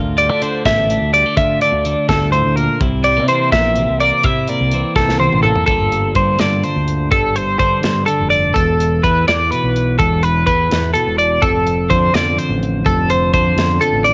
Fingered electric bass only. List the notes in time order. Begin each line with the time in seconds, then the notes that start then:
Already playing: D2
0.30 D3
0.65 A1
1.01 D2
1.37 D3
1.73 D2
2.09 D2
2.46 D2
2.80 C2
3.17 C3
3.52 A#1
3.89 C2
4.24 C3
4.61 C2
4.95 C2
5.32 A1
5.68 G1
6.15 G2
6.40 G2
6.76 D2
7.11 G1
7.59 G2
7.84 G2
8.20 F1
8.56 E1
9.04 E2
9.28 E2
9.64 B1
9.99 E1
10.46 E2
10.72 E2
11.07 E1
11.42 F1
11.90 F2
12.14 F2
12.49 A1
12.86 F1
13.33 F2
13.56 F2
13.93 A1